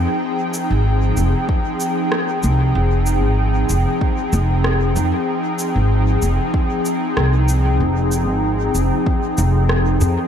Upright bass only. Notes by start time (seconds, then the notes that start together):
0.70 G#1
1.17 F1
2.43 C2
2.75 F1
3.23 G#1
3.70 F1
4.33 F1
4.96 F2
5.76 G#1
6.22 F1
7.17 C2
7.80 F1
8.28 G#1
8.75 F1
9.38 F1
10.01 F2